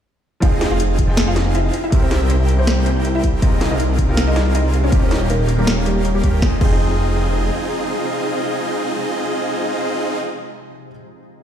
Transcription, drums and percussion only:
0.42 kick, closed hi-hat
0.61 snare, closed hi-hat
0.80 closed hi-hat
0.99 kick, closed hi-hat
1.17 snare, closed hi-hat
1.36 snare, closed hi-hat
1.55 closed hi-hat
1.74 closed hi-hat
1.92 kick, closed hi-hat
2.11 snare, closed hi-hat
2.30 closed hi-hat
2.49 closed hi-hat
2.67 snare, closed hi-hat
2.86 closed hi-hat
3.05 closed hi-hat
3.24 kick, closed hi-hat
3.42 kick, closed hi-hat
3.61 snare, closed hi-hat
3.80 closed hi-hat
3.99 kick, closed hi-hat
4.17 snare, closed hi-hat
4.36 snare, closed hi-hat
4.55 closed hi-hat
4.74 closed hi-hat
4.92 kick, closed hi-hat
5.11 snare, closed hi-hat
5.30 closed hi-hat
5.49 closed hi-hat
5.67 snare, closed hi-hat
5.86 closed hi-hat
6.05 closed hi-hat
6.24 kick, closed hi-hat
6.42 kick, snare
6.61 kick, crash

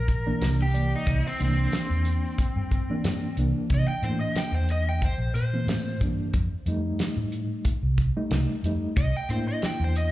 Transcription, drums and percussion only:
0.08 kick, closed hi-hat
0.42 snare, closed hi-hat, tambourine
0.75 closed hi-hat
1.07 kick, closed hi-hat
1.40 closed hi-hat
1.72 snare, closed hi-hat, tambourine
2.05 closed hi-hat
2.38 kick, closed hi-hat
2.71 kick, closed hi-hat
3.04 snare, closed hi-hat, tambourine
3.37 closed hi-hat
3.70 kick, closed hi-hat
4.03 closed hi-hat
4.36 snare, closed hi-hat, tambourine
4.69 closed hi-hat
5.02 kick, closed hi-hat
5.35 closed hi-hat
5.68 snare, closed hi-hat, tambourine
6.01 kick, closed hi-hat
6.33 kick, closed hi-hat
6.66 closed hi-hat
6.99 snare, closed hi-hat, tambourine
7.32 closed hi-hat
7.65 kick, closed hi-hat
7.98 kick, closed hi-hat
8.31 snare, closed hi-hat, tambourine
8.64 closed hi-hat
8.97 kick, closed hi-hat
9.30 closed hi-hat
9.62 snare, closed hi-hat, tambourine
9.96 closed hi-hat

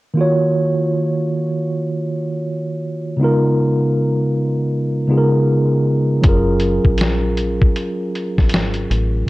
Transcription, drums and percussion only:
6.24 kick, closed hi-hat
6.60 closed hi-hat
6.85 kick
6.98 snare, closed hi-hat
7.37 closed hi-hat
7.62 kick
7.76 closed hi-hat
8.15 closed hi-hat
8.38 kick, snare
8.49 closed hi-hat
8.54 snare
8.74 closed hi-hat
8.91 closed hi-hat

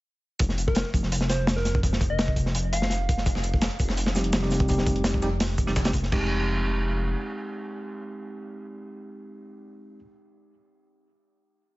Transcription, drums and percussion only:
0.39 kick, closed hi-hat
0.49 snare
0.58 closed hi-hat
0.68 kick
0.75 snare, closed hi-hat
0.94 kick, closed hi-hat
1.03 snare
1.12 closed hi-hat
1.21 snare
1.29 snare, closed hi-hat
1.47 snare, closed hi-hat
1.57 snare
1.65 snare, closed hi-hat
1.75 kick
1.83 kick, closed hi-hat
1.93 snare
2.01 kick, closed hi-hat
2.19 snare, closed hi-hat
2.28 kick
2.36 kick, closed hi-hat
2.46 snare
2.55 closed hi-hat
2.73 closed hi-hat
2.82 snare
2.90 snare, closed hi-hat
3.09 kick, closed hi-hat
3.18 snare
3.26 kick, closed hi-hat, shaker
3.35 snare
3.44 closed hi-hat, shaker
3.54 kick
3.62 snare, closed hi-hat, shaker
3.71 closed hi-hat
3.79 kick, closed hi-hat, shaker
3.89 snare
3.97 closed hi-hat, shaker
4.06 snare
4.15 snare, closed hi-hat, shaker
4.24 closed hi-hat
4.33 snare, closed hi-hat, shaker
4.42 snare
4.51 snare, closed hi-hat, shaker
4.60 kick, closed hi-hat
4.69 kick, closed hi-hat, shaker
4.78 snare
4.87 kick, closed hi-hat, shaker
4.96 closed hi-hat
5.04 snare, closed hi-hat, shaker
5.14 kick
5.22 snare, shaker
5.40 snare, closed hi-hat, open hi-hat
5.58 kick, closed hi-hat, shaker
5.67 snare
5.76 kick, snare, closed hi-hat, shaker
5.85 snare, closed hi-hat
5.93 kick, closed hi-hat, shaker
6.03 snare
6.12 kick, crash

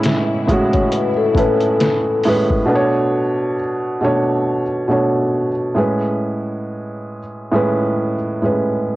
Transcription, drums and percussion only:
0.03 snare, closed hi-hat
0.48 kick, closed hi-hat
0.73 kick, closed hi-hat
0.92 closed hi-hat
1.35 kick, closed hi-hat
1.60 closed hi-hat
1.80 snare, closed hi-hat
2.24 open hi-hat
2.50 kick

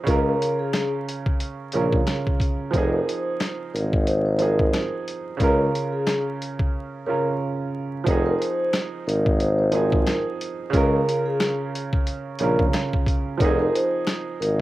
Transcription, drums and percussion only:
0.07 kick, closed hi-hat
0.42 closed hi-hat
0.73 finger snap, snare, closed hi-hat
1.09 closed hi-hat
1.26 kick
1.40 closed hi-hat
1.72 closed hi-hat
1.93 kick
2.07 finger snap, snare, closed hi-hat
2.27 kick
2.40 kick, closed hi-hat
2.73 kick, closed hi-hat
3.09 closed hi-hat
3.40 finger snap, snare, closed hi-hat
3.75 closed hi-hat
3.93 kick
4.07 closed hi-hat
4.39 closed hi-hat
4.59 kick
4.73 finger snap, snare, closed hi-hat
5.08 closed hi-hat
5.40 kick, closed hi-hat
5.75 closed hi-hat
6.07 finger snap, snare, closed hi-hat
6.42 closed hi-hat
6.59 kick
8.07 kick, closed hi-hat
8.42 closed hi-hat
8.73 finger snap, snare, closed hi-hat
9.09 closed hi-hat
9.26 kick
9.40 closed hi-hat
9.72 closed hi-hat
9.92 kick
10.07 finger snap, snare, closed hi-hat
10.41 closed hi-hat
10.73 kick, closed hi-hat
11.09 closed hi-hat
11.40 finger snap, snare, closed hi-hat
11.75 closed hi-hat
11.93 kick
12.07 closed hi-hat
12.39 closed hi-hat
12.59 kick
12.73 finger snap, snare, closed hi-hat
12.93 kick
13.06 kick, closed hi-hat
13.40 kick, closed hi-hat
13.75 closed hi-hat
14.07 finger snap, snare, closed hi-hat
14.42 closed hi-hat

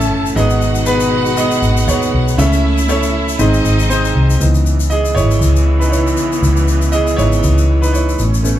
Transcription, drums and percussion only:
0.01 shaker
0.26 shaker
0.37 shaker
0.50 shaker
0.61 shaker
0.75 shaker
0.86 shaker
1.00 shaker
1.26 shaker
1.37 shaker
1.51 shaker
1.63 shaker
1.77 shaker
1.88 shaker
2.02 shaker
2.28 shaker
2.39 shaker
2.53 shaker
2.78 shaker
2.89 shaker
3.03 shaker
3.28 shaker
3.39 shaker
3.53 shaker
3.65 shaker
3.79 shaker
3.91 shaker
4.05 shaker
4.30 shaker
4.41 shaker
4.54 shaker
4.66 shaker
4.80 shaker
4.91 shaker
5.05 shaker
5.17 shaker
5.31 shaker
5.42 shaker
5.56 shaker
5.82 shaker
5.93 shaker
6.07 shaker
6.17 shaker
6.32 shaker
6.43 shaker
6.57 shaker
6.68 shaker
6.82 shaker
6.92 shaker
7.07 shaker
7.19 shaker
7.32 shaker
7.43 shaker
7.58 shaker
7.83 shaker
7.95 shaker
8.09 shaker
8.19 shaker
8.34 shaker
8.45 shaker

